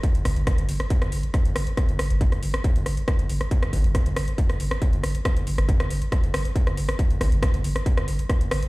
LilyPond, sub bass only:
\new Staff \with { instrumentName = "Sub bass" } { \clef bass \time 4/4 \key c \minor \tempo 4 = 138 r16 g,,16 g,,16 g,,16 r16 g,,16 g,,16 r8 g,,16 g,,16 r8 g,,16 g,,16 r16 | r16 g,,16 g,,16 g,,16 r16 g,,16 g,,16 r8 g,,16 g,,16 r8 g,,16 g,,16 r16 | r16 g,,16 g,,16 g,,16 r16 g,,16 g,,16 r8 g,,16 g,,16 r8 g,,16 g,,16 r16 | r16 g,,16 g,,16 g,,16 r16 g,,16 g,,16 r8 g,,16 g,,16 r8 g,,16 g,,16 r16 |
r16 g,,16 g,,16 g,,16 r16 g,,16 g,,16 r8 g,,16 g,,16 r8 g,,16 g,,16 r16 | }